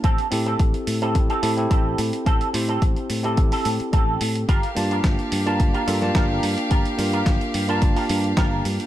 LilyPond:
<<
  \new Staff \with { instrumentName = "Violin section" } { \time 4/4 \key g \dorian \tempo 4 = 108 r1 | r1 | <g' f''>1~ | <g' f''>1 | }
  \new Staff \with { instrumentName = "Clean electric guitar" } { \time 4/4 \key g \dorian <c' g' a'>8 r16 <c' g' a'>16 r8. <c' g' a'>16 r16 <c' g' a'>16 r8 <c' g' a'>8 r8 | <c' g' a'>8 r16 <c' g' a'>16 r8. <c' g' a'>16 r16 <c' g' a'>16 r8 <c' g' a'>8 r8 | <f' g' bes'>8 r16 <f' g' bes'>16 r8. <f' g' bes'>16 r16 <f' g' bes'>16 r8 <f' g' bes'>8 r8 | <f' g' bes'>8 r16 <f' g' bes'>16 r8. <f' g' bes'>16 r16 <f' g' bes'>16 r8 <f' g' bes'>8 r8 | }
  \new Staff \with { instrumentName = "Tine electric piano" } { \time 4/4 \key g \dorian r8 <c' e' g' a'>4~ <c' e' g' a'>16 <c' e' g' a'>8. <c' e' g' a'>16 <c' e' g' a'>4~ <c' e' g' a'>16~ | <c' e' g' a'>8 <c' e' g' c''>4~ <c' e' g' c''>16 <c' e' g' a'>2~ <c' e' g' a'>16 | r8 <bes d' f' a''>4~ <bes d' f' a''>16 <bes d' f' a''>8. <bes d' f' a'>16 <bes d' f' a''>4~ <bes d' f' a''>16~ | <bes d' f' a''>8 <bes d' f' bes'>4~ <bes d' f' bes'>16 <bes d' f' a''>2~ <bes d' f' a''>16 | }
  \new Staff \with { instrumentName = "Fingered electric bass" } { \clef bass \time 4/4 \key g \dorian a,,8 a,8 a,,8 a,8 a,,8 a,8 a,,8 a,8 | a,,8 a,8 a,,8 a,8 a,,8 a,8 a,,8 a,8 | g,,8 g,8 g,,8 g,8 g,,8 g,8 g,,8 g,8 | g,,8 g,8 g,,8 g,8 g,,8 g,8 g,,8 g,8 | }
  \new DrumStaff \with { instrumentName = "Drums" } \drummode { \time 4/4 <hh bd>16 hh16 hho16 hh16 <hh bd>16 hh16 hho16 hh16 <hh bd>16 hh16 hho16 hh16 <hh bd>8 hho16 hh16 | <hh bd>16 hh16 hho16 hh16 <hh bd>16 hh16 hho16 hh16 <hh bd>16 hho16 hho16 hh16 <hh bd>8 hho16 hh16 | <hh bd>16 hh16 hho16 hh16 <hh bd sn>16 hh16 hho16 hh16 <hh bd>16 hh16 hho16 <hh sn>16 <hh bd sn>8 hho16 hh16 | <hh bd>16 hh16 hho16 hh16 <hh bd sn>16 hh16 hho16 hh16 <hh bd>16 hho16 hho16 hh16 <hh bd sn>8 hho16 hh16 | }
>>